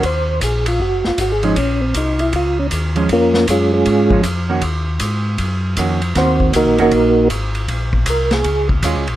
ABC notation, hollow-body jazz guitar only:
X:1
M:4/4
L:1/8
Q:"Swing" 1/4=157
K:Bbm
V:1 name="Hollow-body jazz guitar"
z6 z [F,A,D] | z6 z [F,A,D] | z4 z [F,A,D] z [E,B,DG] | z6 [E,B,DG] z |
[E,B,G]3 [E,B,DG] z4 | z6 [A,DF] z |]